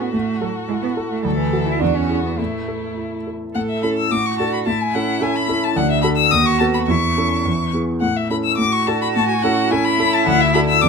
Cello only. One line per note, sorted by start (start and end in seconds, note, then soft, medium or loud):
0.00 0.12 B3 medium
0.13 0.41 A3 medium
0.41 0.49 F#3 medium
0.69 0.74 G#3 medium
0.82 0.90 B3 medium
1.11 1.25 A3 medium
1.24 1.37 F#3 medium
1.37 1.68 E3 medium
1.66 1.81 E4 medium
1.79 1.96 D4 medium
1.95 2.24 C#4 medium
2.24 2.37 B3 medium
2.38 3.24 A3 medium
3.55 4.08 A4 medium
4.13 4.69 F#4 medium
4.67 5.76 E4 medium
5.76 6.31 D4 medium
6.32 6.91 F#4 medium
6.90 7.75 E4 medium
8.59 9.72 F#4 medium
9.70 10.82 E4 loud
10.82 10.89 D4 medium